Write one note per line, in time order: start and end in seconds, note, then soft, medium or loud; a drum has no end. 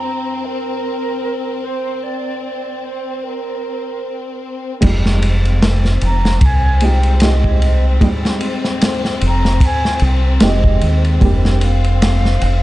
0.00 4.76 F2 medium
0.00 4.77 G3 medium
0.00 4.77 A#3 medium
0.00 4.80 C4 medium
0.00 4.77 D4 medium
0.00 4.78 G4 medium
0.00 0.45 A#5 medium
0.44 1.65 A#4 medium
1.64 2.04 C5 medium
2.03 2.42 D5 medium
2.44 2.85 D5 medium
2.83 3.24 C5 medium
3.23 4.42 A#4 medium
4.81 5.99 F1 loud
4.81 6.79 G3 medium
4.81 6.77 G#3 medium
4.81 12.63 C4 medium
4.81 6.78 D#4 medium
4.81 6.78 F4 medium
4.81 kick loud
4.81 crash medium
4.81 ride medium
5.06 snare soft
5.22 ride medium
5.45 ride soft
5.62 snare loud
5.62 ride medium
5.85 snare soft
6.01 6.38 F1 medium
6.01 6.46 A#5 loud
6.01 ride medium
6.25 snare medium
6.41 7.98 C2 medium
6.41 6.85 G#5 loud
6.41 kick loud
6.41 ride loud
6.80 7.17 G#3 medium
6.80 7.18 D#4 medium
6.80 7.18 F4 medium
6.80 7.18 G4 medium
6.80 7.25 G5 loud
6.80 ride medium
7.03 ride soft
7.20 7.98 G#3 medium
7.20 7.98 D#4 medium
7.20 7.98 F4 medium
7.20 7.85 D#5 medium
7.20 snare loud
7.20 ride medium
7.24 7.99 G4 loud
7.44 kick medium
7.62 ride medium
8.01 10.38 G3 medium
8.01 10.37 G#3 medium
8.01 10.37 D#4 medium
8.01 10.38 F4 medium
8.01 kick loud
8.01 ride medium
8.25 snare medium
8.41 ride medium
8.64 snare soft
8.81 snare loud
8.81 ride medium
9.05 snare soft
9.21 9.58 F1 medium
9.21 ride medium
9.26 9.67 A#5 loud
9.45 snare soft
9.60 kick loud
9.60 ride loud
9.65 10.03 G#5 loud
9.85 snare soft
9.99 10.37 C2 loud
9.99 ride medium
10.04 10.13 G5 medium
10.40 10.83 F1 medium
10.40 11.17 G#3 medium
10.40 11.18 D#4 medium
10.40 11.18 F4 medium
10.40 11.18 G4 medium
10.40 11.02 D#5 medium
10.40 snare loud
10.40 ride medium
10.64 kick medium
10.81 11.18 D#2 medium
10.81 ride medium
11.05 ride soft
11.21 12.38 F1 loud
11.21 12.63 G3 medium
11.21 12.63 A#3 medium
11.21 12.63 D4 medium
11.21 12.63 G4 medium
11.21 kick loud
11.21 ride medium
11.45 snare soft
11.58 11.65 G5 medium
11.58 ride medium
11.64 12.63 F5 loud
11.84 ride soft
12.02 snare loud
12.02 ride loud
12.25 snare soft
12.42 12.63 F1 medium
12.42 ride medium